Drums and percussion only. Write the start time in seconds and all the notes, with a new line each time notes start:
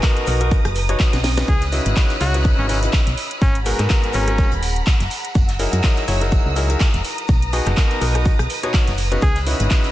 0.03 kick, snare, clap, shaker
0.17 closed hi-hat
0.26 open hi-hat, shaker
0.41 closed hi-hat
0.51 kick, shaker
0.65 cross-stick, closed hi-hat
0.75 open hi-hat, shaker
0.89 closed hi-hat
1.00 kick, snare, clap, shaker
1.13 snare, closed hi-hat
1.24 snare, open hi-hat, shaker
1.37 snare, closed hi-hat, shaker
1.47 kick, tambourine, shaker
1.61 snare, closed hi-hat, tambourine
1.72 open hi-hat, tambourine, shaker
1.86 closed hi-hat, tambourine
1.96 kick, snare, clap, tambourine, shaker
2.10 snare, closed hi-hat, tambourine
2.20 open hi-hat, tambourine, shaker
2.34 snare, closed hi-hat, tambourine
2.45 kick, tambourine, shaker
2.58 tambourine
2.69 open hi-hat, tambourine, shaker
2.83 closed hi-hat
2.93 kick, snare, clap, tambourine, shaker
3.07 snare, closed hi-hat, tambourine
3.17 open hi-hat, tambourine, shaker
3.31 closed hi-hat, tambourine
3.41 kick, tambourine, shaker
3.55 closed hi-hat, tambourine
3.66 open hi-hat, tambourine, shaker
3.79 cross-stick, clap, closed hi-hat, tambourine
3.89 kick, snare, clap, tambourine, shaker
4.04 closed hi-hat, tambourine
4.13 open hi-hat, tambourine, shaker
4.28 cross-stick, closed hi-hat, tambourine
4.38 kick, tambourine, shaker
4.52 closed hi-hat, tambourine
4.63 open hi-hat, tambourine, shaker
4.76 closed hi-hat, tambourine
4.86 kick, snare, clap, tambourine, shaker
5.00 snare, closed hi-hat, tambourine
5.10 open hi-hat, tambourine, shaker
5.24 closed hi-hat, tambourine
5.35 kick, tambourine, shaker
5.48 snare, closed hi-hat, tambourine
5.59 open hi-hat, tambourine, shaker
5.73 closed hi-hat, tambourine
5.83 kick, snare, clap, tambourine, shaker
5.97 snare, closed hi-hat, tambourine
6.08 open hi-hat, tambourine, shaker
6.21 snare, closed hi-hat, tambourine
6.32 kick, tambourine, shaker
6.46 tambourine
6.56 open hi-hat, tambourine, shaker
6.70 closed hi-hat, tambourine
6.80 kick, snare, clap, tambourine, shaker
6.94 snare, closed hi-hat, tambourine
7.04 open hi-hat, tambourine, shaker
7.18 closed hi-hat, tambourine
7.28 kick, tambourine, shaker
7.42 closed hi-hat, tambourine
7.53 open hi-hat, tambourine, shaker
7.67 cross-stick, clap, closed hi-hat
7.77 kick, snare, clap, tambourine, shaker
7.90 closed hi-hat, tambourine
8.01 open hi-hat, tambourine, shaker
8.15 cross-stick, closed hi-hat, tambourine
8.25 kick, tambourine, shaker
8.39 cross-stick, closed hi-hat, tambourine
8.50 open hi-hat, tambourine, shaker
8.63 closed hi-hat
8.73 kick, snare, clap, tambourine, shaker
8.87 snare, closed hi-hat, tambourine
8.98 open hi-hat, tambourine, shaker
9.11 closed hi-hat, tambourine
9.22 kick, tambourine, shaker
9.35 snare, closed hi-hat, tambourine
9.46 open hi-hat, tambourine, shaker
9.60 closed hi-hat, tambourine
9.70 kick, snare, clap, tambourine, shaker
9.84 snare, closed hi-hat, tambourine